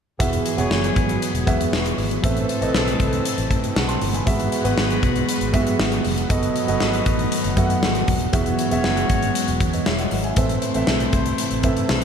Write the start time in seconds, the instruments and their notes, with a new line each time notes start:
0.19 fingered electric bass E1, grand piano E3 B3 F#4 G#4 E5, string machine E3 F#3 G#3 F#4 B4, horn section E3 G#3 B3 G#4, kick, closed hi-hat
0.33 closed hi-hat
0.46 closed hi-hat
0.57 fingered electric bass E1, grand piano B3 F#4 G#4 C#5, closed hi-hat
0.71 fingered electric bass F#1, snare
0.84 closed hi-hat
0.96 fingered electric bass G#1, kick, closed hi-hat
1.09 closed hi-hat
1.22 closed hi-hat
1.34 fingered electric bass E1, closed hi-hat
1.46 fingered electric bass E2, grand piano B3 F#4 G#4 E5, kick, closed hi-hat
1.61 closed hi-hat
1.72 fingered electric bass E1, snare
1.86 closed hi-hat
1.98 fingered electric bass G#1, open hi-hat
2.11 closed hi-hat
2.23 fingered electric bass A1, grand piano A2 C4 A4 B4 E5, string machine C3 A3 E4, horn section E3 A3 C4 A4, kick, closed hi-hat
2.37 closed hi-hat
2.49 closed hi-hat
2.61 fingered electric bass A1, grand piano C4 A4 B4 D#5, closed hi-hat
2.74 fingered electric bass B1, snare
2.88 closed hi-hat
3.00 fingered electric bass C2, kick, closed hi-hat
3.13 closed hi-hat
3.25 closed hi-hat
3.38 fingered electric bass A1, closed hi-hat
3.50 fingered electric bass A2, kick, closed hi-hat
3.64 closed hi-hat
3.76 fingered electric bass B1, grand piano F#5 A5, snare
3.88 grand piano A5 C6, closed hi-hat
4.01 fingered electric bass G1, open hi-hat
4.14 grand piano G#5 B5, closed hi-hat
4.26 fingered electric bass G#1, grand piano G#2 B3 F#4 G#4 E5, string machine F#3 G#3 B3 F#4, horn section G#3 B3 F#4 B4, kick, closed hi-hat
4.40 closed hi-hat
4.52 closed hi-hat
4.64 fingered electric bass G#1, grand piano B3 F#4 G#4 B4, closed hi-hat
4.78 fingered electric bass G#1, snare
4.90 closed hi-hat
5.03 fingered electric bass B1, kick, closed hi-hat
5.16 closed hi-hat
5.29 closed hi-hat
5.41 fingered electric bass G#1, closed hi-hat
5.53 fingered electric bass G#2, grand piano B3 F#4 G4 E5, kick, closed hi-hat
5.60 grand piano G#4
5.67 closed hi-hat
5.79 fingered electric bass G#1, snare
5.92 closed hi-hat
6.04 fingered electric bass F1, open hi-hat
6.18 closed hi-hat
6.29 fingered electric bass F#1, string machine D#3 A3, horn section F#3 B3 D#4 B4, grand piano B3 F#4 A4 D#5, kick, closed hi-hat
6.43 closed hi-hat
6.56 closed hi-hat
6.67 fingered electric bass F#1, grand piano B3 F#4 A4 D#5, closed hi-hat
6.80 fingered electric bass G#1, snare
6.93 closed hi-hat
7.06 fingered electric bass A1, kick, closed hi-hat
7.19 closed hi-hat
7.32 closed hi-hat
7.44 fingered electric bass F#1, closed hi-hat
7.57 fingered electric bass F#2, grand piano B3 F#4 A4 E5, kick, closed hi-hat
7.64 grand piano F#5
7.70 closed hi-hat
7.83 fingered electric bass G#1, snare
7.95 closed hi-hat
8.08 fingered electric bass D#1, kick, open hi-hat
8.21 closed hi-hat
8.33 fingered electric bass E1, grand piano E3 B3 F#4 G#4 E5, string machine E3 G#3, horn section G#3 C#4 F#4 C#5, kick, closed hi-hat
8.46 closed hi-hat
8.59 closed hi-hat
8.71 fingered electric bass E1, grand piano B3 F#4 G#4 E5, closed hi-hat
8.84 fingered electric bass F#1, snare
8.97 closed hi-hat
9.10 fingered electric bass G#1, kick, closed hi-hat
9.22 closed hi-hat
9.35 closed hi-hat
9.48 fingered electric bass E1, closed hi-hat
9.60 fingered electric bass E2, kick, closed hi-hat
9.73 grand piano B4 D#5, closed hi-hat
9.86 fingered electric bass E1, grand piano C#5 E5, snare
9.98 grand piano D#5 F#5, closed hi-hat
10.11 fingered electric bass G#1, open hi-hat
10.24 grand piano E5 G#5, closed hi-hat
10.36 fingered electric bass A1, grand piano A2 C4 A4 B4 E5, string machine C3 A3 C4 E4, horn section A3 C4 E4 C5, kick, closed hi-hat
10.49 closed hi-hat
10.62 closed hi-hat
10.74 fingered electric bass A1, grand piano C4 A4 B4 E5, closed hi-hat
10.87 fingered electric bass B1, snare
11.00 closed hi-hat
11.13 fingered electric bass C2, kick, closed hi-hat
11.26 closed hi-hat
11.38 closed hi-hat
11.51 fingered electric bass A1, closed hi-hat
11.63 fingered electric bass A2, grand piano C4 A4 B4 E5, kick, closed hi-hat
11.77 closed hi-hat
11.89 fingered electric bass B1, snare